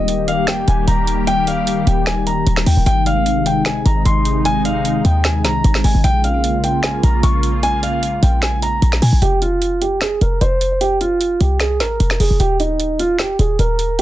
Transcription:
0.00 0.64 D#1 loud
0.00 6.00 D#3 medium
0.00 2.83 G3 medium
0.00 2.83 A#3 medium
0.00 2.83 G4 medium
0.00 0.26 D#5 medium
0.08 closed hi-hat medium
0.28 0.43 F5 medium
0.28 closed hi-hat medium
0.47 0.63 G5 medium
0.47 finger snap medium
0.47 snare loud
0.47 closed hi-hat medium
0.68 0.87 D#1 loud
0.68 0.83 G#5 medium
0.68 closed hi-hat medium
0.87 1.83 D#1 loud
0.87 1.25 A#5 medium
0.87 closed hi-hat medium
1.07 closed hi-hat medium
1.27 1.43 G5 loud
1.27 closed hi-hat medium
1.47 1.85 F5 medium
1.47 closed hi-hat medium
1.67 closed hi-hat medium
1.87 2.44 D#1 loud
1.87 2.02 G5 medium
1.87 closed hi-hat medium
2.06 2.22 G#5 medium
2.06 finger snap medium
2.06 snare loud
2.06 closed hi-hat medium
2.27 2.64 A#5 medium
2.27 closed hi-hat medium
2.47 2.66 D#1 loud
2.47 closed hi-hat medium
2.56 finger snap medium
2.56 snare medium
2.66 2.77 D#2 loud
2.66 2.82 G5 medium
2.66 open hi-hat medium
2.77 2.86 D#1 loud
2.86 3.82 G#1 loud
2.86 6.01 C3 medium
2.86 9.18 G#3 medium
2.86 6.01 D#4 medium
2.86 3.02 G5 loud
2.86 closed hi-hat medium
3.06 3.44 F5 medium
3.06 closed hi-hat medium
3.26 closed hi-hat medium
3.46 3.62 G5 medium
3.46 closed hi-hat medium
3.65 3.81 G#5 medium
3.65 finger snap loud
3.65 snare loud
3.65 closed hi-hat medium
3.85 4.05 G#1 loud
3.85 4.01 A#5 medium
3.85 closed hi-hat medium
4.05 5.01 G#1 loud
4.05 4.43 C6 medium
4.05 closed hi-hat medium
4.25 closed hi-hat medium
4.45 4.61 G#5 loud
4.45 closed hi-hat medium
4.65 5.02 F5 medium
4.65 closed hi-hat medium
4.85 closed hi-hat medium
5.05 5.46 D#2 loud
5.05 5.20 G5 medium
5.05 closed hi-hat medium
5.24 5.40 G#5 medium
5.24 finger snap medium
5.24 snare loud
5.24 closed hi-hat medium
5.44 5.63 C2 loud
5.44 5.82 A#5 medium
5.44 snare medium
5.44 closed hi-hat medium
5.64 5.83 G#1 loud
5.64 closed hi-hat medium
5.74 finger snap medium
5.74 snare medium
5.84 5.94 G#1 loud
5.84 6.00 G#5 medium
5.84 open hi-hat medium
5.95 6.03 G#1 loud
6.04 6.99 A#1 loud
6.04 9.19 C#3 medium
6.04 9.19 A#3 medium
6.04 9.19 F4 loud
6.04 6.20 G5 loud
6.04 closed hi-hat medium
6.24 6.61 F5 medium
6.24 closed hi-hat medium
6.44 closed hi-hat medium
6.64 6.79 G5 medium
6.64 closed hi-hat medium
6.83 6.99 G#5 medium
6.83 finger snap loud
6.83 snare loud
6.83 closed hi-hat medium
7.03 7.23 A#1 loud
7.03 7.19 A#5 medium
7.03 closed hi-hat medium
7.23 8.19 A#1 loud
7.23 7.61 C#6 medium
7.23 closed hi-hat medium
7.43 closed hi-hat medium
7.63 7.79 G#5 loud
7.63 closed hi-hat medium
7.83 8.20 F5 medium
7.83 closed hi-hat medium
8.03 closed hi-hat medium
8.23 8.80 A#1 loud
8.23 8.38 G5 medium
8.23 closed hi-hat medium
8.42 8.58 G#5 medium
8.42 finger snap medium
8.42 snare loud
8.42 closed hi-hat medium
8.62 9.00 A#5 medium
8.62 closed hi-hat medium
8.82 9.01 A#1 loud
8.82 closed hi-hat medium
8.92 finger snap medium
8.92 snare medium
9.02 9.12 A#2 loud
9.02 9.18 G#5 medium
9.02 open hi-hat medium
9.13 9.21 A#1 loud
9.22 10.17 F1 loud
9.22 9.38 G4 loud
9.22 closed hi-hat medium
9.42 9.79 F4 medium
9.42 closed hi-hat medium
9.62 closed hi-hat medium
9.81 9.97 G4 medium
9.81 closed hi-hat medium
10.01 10.17 G#4 medium
10.01 finger snap medium
10.01 snare loud
10.01 closed hi-hat medium
10.21 10.40 F1 loud
10.21 10.37 A#4 medium
10.21 closed hi-hat medium
10.41 11.37 F1 loud
10.41 10.79 C5 medium
10.41 closed hi-hat medium
10.61 closed hi-hat medium
10.81 10.96 G4 loud
10.81 closed hi-hat medium
11.01 11.38 F4 medium
11.01 closed hi-hat medium
11.21 closed hi-hat medium
11.41 11.82 C2 loud
11.41 11.56 G4 medium
11.41 closed hi-hat medium
11.60 11.76 G#4 medium
11.60 finger snap medium
11.60 snare loud
11.60 closed hi-hat medium
11.80 11.99 G#1 loud
11.80 12.18 A#4 medium
11.80 snare medium
11.80 closed hi-hat medium
12.00 12.19 F1 loud
12.00 closed hi-hat medium
12.10 finger snap medium
12.10 snare medium
12.20 12.30 F1 loud
12.20 12.36 G#4 medium
12.20 open hi-hat medium
12.31 12.40 F1 loud
12.40 13.35 D#1 loud
12.40 12.55 G4 loud
12.40 closed hi-hat medium
12.60 12.97 D#4 medium
12.60 closed hi-hat medium
12.80 closed hi-hat medium
12.99 13.15 F4 medium
12.99 closed hi-hat medium
13.19 13.35 G4 medium
13.19 finger snap medium
13.19 snare loud
13.19 closed hi-hat medium
13.39 13.58 D#1 loud
13.39 13.55 G#4 medium
13.39 closed hi-hat medium
13.59 14.02 D#1 loud
13.59 13.97 A#4 medium
13.59 closed hi-hat medium
13.79 closed hi-hat medium

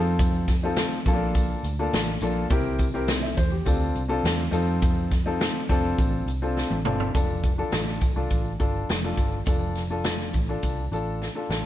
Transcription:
0.00 0.84 F2 loud
0.00 0.49 C4 medium
0.00 0.49 D#4 medium
0.00 0.49 F4 medium
0.00 0.53 A4 loud
0.19 kick loud
0.19 closed hi-hat medium
0.48 kick medium
0.48 snare soft
0.48 closed hi-hat medium
0.63 0.97 C4 medium
0.63 0.97 D#4 medium
0.63 0.97 F4 medium
0.63 0.97 A4 medium
0.76 snare loud
0.76 closed hi-hat medium
1.06 1.53 A#1 loud
1.06 1.64 A#3 medium
1.06 1.13 C#4 medium
1.06 1.65 F4 medium
1.06 1.65 A4 loud
1.06 kick loud
1.06 closed hi-hat medium
1.13 1.68 D4 medium
1.35 kick loud
1.35 closed hi-hat medium
1.63 1.87 D2 medium
1.63 closed hi-hat medium
1.79 2.12 A#3 medium
1.79 2.12 D4 medium
1.79 2.13 F4 medium
1.79 2.13 A4 medium
1.93 2.17 A1 medium
1.93 snare loud
1.93 closed hi-hat loud
2.21 2.45 A#1 medium
2.21 2.44 A#3 medium
2.21 2.45 D4 medium
2.21 2.44 F4 medium
2.21 2.45 A4 medium
2.21 closed hi-hat medium
2.50 3.33 C2 loud
2.50 2.84 C4 medium
2.50 2.84 E4 medium
2.50 2.85 G4 medium
2.50 2.85 A#4 loud
2.50 kick loud
2.50 closed hi-hat medium
2.79 kick loud
2.79 closed hi-hat medium
2.94 3.28 C4 medium
2.94 3.28 E4 medium
2.94 3.09 G4 medium
2.94 3.09 A#4 medium
3.08 snare loud
3.08 closed hi-hat medium
3.23 3.37 E5 medium
3.23 snare soft
3.37 3.61 E2 medium
3.37 3.51 C5 medium
3.37 kick loud
3.37 closed hi-hat medium
3.52 3.79 G4 medium
3.66 3.90 D2 loud
3.66 4.00 C4 medium
3.66 4.00 D4 medium
3.66 4.00 F4 medium
3.66 4.00 A4 medium
3.66 kick medium
3.66 closed hi-hat medium
3.95 4.19 C2 medium
3.95 closed hi-hat medium
4.08 4.43 C4 medium
4.08 4.43 D4 medium
4.08 4.44 F4 medium
4.08 4.43 A4 loud
4.23 4.47 E2 medium
4.23 snare loud
4.23 closed hi-hat medium
4.51 5.47 F2 medium
4.51 5.10 C4 medium
4.51 5.11 D#4 medium
4.51 5.11 F4 medium
4.51 5.11 A4 loud
4.51 closed hi-hat medium
4.82 kick loud
4.82 closed hi-hat medium
5.11 kick medium
5.11 snare soft
5.11 closed hi-hat medium
5.26 5.59 C4 medium
5.26 5.59 D#4 medium
5.26 5.60 F4 medium
5.26 5.60 A4 medium
5.41 snare loud
5.41 closed hi-hat medium
5.69 5.93 F1 medium
5.69 6.27 C4 medium
5.69 6.27 D4 medium
5.69 6.28 F4 medium
5.69 6.28 A4 loud
5.69 kick loud
5.69 closed hi-hat medium
5.98 6.22 A1 loud
5.98 kick loud
5.98 closed hi-hat medium
6.26 6.62 C2 medium
6.26 closed hi-hat medium
6.42 6.76 C4 medium
6.42 6.76 D4 medium
6.42 6.76 F4 medium
6.42 6.76 A4 medium
6.57 snare medium
6.70 6.82 A1 medium
6.70 high tom medium
6.85 7.09 G1 loud
6.85 7.08 C4 medium
6.85 7.08 D4 medium
6.85 7.08 F4 medium
6.85 7.08 A4 medium
6.85 mid tom medium
7.00 floor tom medium
7.14 7.62 F1 medium
7.14 7.48 D4 medium
7.14 7.48 F4 medium
7.14 7.49 A4 medium
7.14 kick loud
7.14 closed hi-hat medium
7.43 kick medium
7.43 closed hi-hat medium
7.58 8.03 D4 medium
7.58 8.03 F4 medium
7.58 8.03 A4 medium
7.72 8.08 A1 medium
7.72 snare loud
7.72 closed hi-hat medium
7.87 snare soft
8.01 kick loud
8.01 closed hi-hat medium
8.16 8.28 C2 medium
8.16 8.50 D4 medium
8.16 8.50 F4 medium
8.16 8.50 A4 medium
8.30 8.55 A1 medium
8.30 kick medium
8.30 closed hi-hat medium
8.59 8.83 G1 medium
8.59 8.93 D4 medium
8.59 8.93 F4 medium
8.59 8.94 A4 medium
8.59 kick medium
8.59 closed hi-hat medium
8.89 9.13 F1 medium
8.89 snare loud
8.89 closed hi-hat medium
9.04 9.38 D4 medium
9.04 9.38 F4 medium
9.04 9.38 A4 medium
9.17 9.41 G1 medium
9.17 kick medium
9.17 closed hi-hat medium
9.46 10.30 F1 loud
9.46 9.81 D4 medium
9.46 9.81 F4 medium
9.46 9.81 A4 medium
9.46 kick loud
9.46 closed hi-hat medium
9.76 snare soft
9.76 closed hi-hat medium
9.90 10.35 D4 medium
9.90 10.36 F4 medium
9.90 10.36 A4 medium
10.04 snare loud
10.04 closed hi-hat medium
10.20 snare soft
10.34 10.58 A1 medium
10.34 kick medium
10.34 closed hi-hat medium
10.49 10.83 D4 medium
10.49 10.83 F4 medium
10.49 10.83 A4 medium
10.63 10.87 C2 medium
10.63 kick medium
10.63 closed hi-hat medium
10.91 11.27 A1 medium
10.91 11.26 D4 medium
10.91 11.26 F4 medium
10.91 11.27 A4 medium
10.91 closed hi-hat medium
11.22 snare medium
11.35 11.66 D4 medium
11.35 11.66 F4 medium
11.35 11.66 A4 medium
11.49 11.62 A1 medium
11.49 snare medium

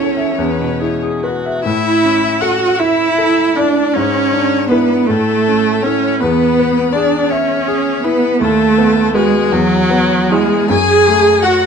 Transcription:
0.00 0.34 E2 soft
0.00 0.41 E3 soft
0.00 1.24 C#4 medium
0.00 0.41 E4 soft
0.00 0.35 A4 soft
0.00 0.41 A4 soft
0.00 0.30 C#5 soft
0.00 0.98 C#5 medium
0.17 0.38 E5 soft
0.37 1.61 E2 soft
0.37 0.82 B4 medium
0.60 0.94 B2 soft
0.80 1.15 E4 soft
0.80 1.25 G#4 medium
1.03 1.37 G#4 soft
1.23 1.64 F#4 medium
1.23 1.57 B4 soft
1.46 1.65 E5 soft
1.64 3.91 A2 medium
1.64 2.44 E4 medium
1.64 2.42 E4 medium
1.64 2.42 E5 medium
2.05 2.65 C#4 soft
2.41 2.81 F#4 medium
2.41 2.82 F#4 medium
2.41 3.03 A4 medium
2.41 2.79 F#5 medium
2.78 3.57 E4 medium
2.78 3.57 E5 medium
2.78 3.42 E5 soft
3.18 3.79 A4 soft
3.55 3.95 D4 medium
3.55 3.95 E4 soft
3.55 3.96 D5 medium
3.93 5.06 G#2 medium
3.93 4.68 C#4 medium
3.93 4.71 C#4 medium
3.93 4.71 C#5 medium
4.33 4.93 D4 soft
4.68 5.08 B3 medium
4.68 5.09 B3 medium
4.68 5.05 E4 soft
4.68 5.08 B4 medium
4.68 5.05 B4 soft
5.07 6.19 A2 medium
5.07 5.85 A3 medium
5.07 5.84 A3 medium
5.07 5.84 A4 medium
5.48 6.08 C#4 soft
5.83 6.22 C#4 medium
5.83 6.21 C#4 medium
5.83 6.18 E4 soft
5.83 6.19 A4 soft
5.83 6.18 C#5 medium
6.19 8.37 E2 medium
6.19 6.93 B3 medium
6.19 6.94 B4 medium
6.59 7.17 B3 soft
6.92 7.31 D4 medium
6.92 7.32 D4 medium
6.92 7.53 G#4 medium
6.92 7.31 D5 medium
7.30 8.03 C#4 medium
7.30 8.05 C#4 medium
7.30 8.06 C#5 medium
7.30 7.89 E5 medium
7.68 8.26 G#4 soft
8.03 8.42 B3 medium
8.03 8.40 B3 medium
8.03 8.41 E4 medium
8.03 8.41 B4 medium
8.40 9.49 D#2 medium
8.40 9.13 A3 medium
8.40 9.16 A3 medium
8.40 9.14 A4 medium
8.78 9.37 B3 medium
9.13 9.51 G#3 medium
9.13 9.54 G#3 medium
9.13 9.49 F#4 soft
9.13 9.54 G#4 medium
9.13 9.48 B4 medium
9.52 10.66 E2 medium
9.52 10.32 F#3 loud
9.52 10.32 F#3 medium
9.52 10.32 F#4 medium
9.90 10.54 B3 soft
10.30 10.71 G#3 medium
10.30 10.69 G#3 medium
10.30 10.66 E4 soft
10.30 10.69 G#4 medium
10.30 10.66 G#4 soft
10.69 11.66 F#2 medium
10.69 11.42 G#4 medium
10.69 11.45 G#4 loud
10.69 11.44 G#5 medium
11.08 11.66 A3 medium
11.43 11.66 F#4 medium
11.43 11.66 F#5 medium

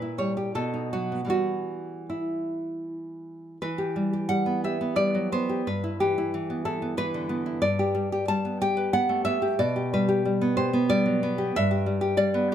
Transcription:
0.00 0.52 A#2 medium
0.00 0.54 E4 soft
0.00 0.16 B4 medium
0.18 0.54 G3 soft
0.18 0.36 C#5 medium
0.37 0.54 G4 soft
0.55 1.27 B2 medium
0.55 0.90 A4 medium
0.74 1.28 D#4 soft
0.93 1.24 F#3 soft
0.93 1.29 F#4 medium
1.12 1.26 B3 soft
1.25 3.57 E3 soft
1.25 3.58 G3 soft
1.25 3.59 B3 soft
1.30 2.06 F#4 medium
2.10 2.85 E4 soft
3.62 5.62 E3 soft
3.62 4.28 B4 medium
3.78 4.12 G4 soft
3.96 4.28 G3 soft
4.13 4.63 G4 soft
4.29 4.95 G3 soft
4.29 4.63 F#5 medium
4.46 4.80 B3 soft
4.64 5.48 G4 soft
4.64 4.96 E5 medium
4.81 5.31 B3 soft
4.96 5.65 G3 soft
4.96 5.30 D5 medium
5.15 5.66 F#3 soft
5.32 5.66 B3 soft
5.32 5.65 C5 medium
5.49 5.66 G4 soft
5.67 7.60 G2 soft
5.67 5.99 B4 medium
5.84 6.17 E4 soft
6.00 6.33 E3 soft
6.00 6.64 G4 medium
6.18 6.64 E4 medium
6.34 6.96 E3 soft
6.50 6.81 B3 soft
6.65 7.45 E4 soft
6.65 6.97 A4 medium
6.82 7.28 B3 soft
6.97 7.64 E3 medium
6.97 7.61 B4 medium
7.14 7.64 D3 soft
7.29 7.63 B3 medium
7.46 7.63 E4 soft
7.62 9.56 G2 soft
7.62 8.26 D5 medium
7.79 8.11 G4 medium
7.95 8.27 G3 soft
8.12 8.28 G4 medium
8.28 8.76 G3 medium
8.28 8.60 A5 loud
8.45 8.92 B3 soft
8.62 9.41 G4 soft
8.62 8.93 G5 medium
8.77 9.60 B4 medium
8.93 9.25 B3 medium
8.93 9.24 F#5 loud
9.09 9.60 A3 soft
9.25 9.41 B3 medium
9.25 9.58 E5 medium
9.42 9.60 G4 medium
9.59 11.50 B2 medium
9.59 9.92 D5 medium
9.76 10.07 G4 medium
9.93 10.24 G3 medium
9.93 10.55 B4 medium
10.09 10.57 G4 medium
10.25 10.88 G3 medium
10.41 10.72 B3 medium
10.57 11.37 G4 medium
10.57 10.88 C5 medium
10.73 11.22 B3 medium
10.89 11.54 G3 medium
10.89 11.52 D5 loud
11.06 11.54 F#3 medium
11.23 11.55 B3 medium
11.38 11.54 G4 medium
11.56 12.55 G2 medium
11.56 12.16 E5 loud
11.71 12.00 G4 medium
11.86 12.16 G3 medium
12.01 12.51 G4 medium
12.17 12.55 G3 medium
12.17 12.55 D5 loud
12.34 12.55 B3 medium

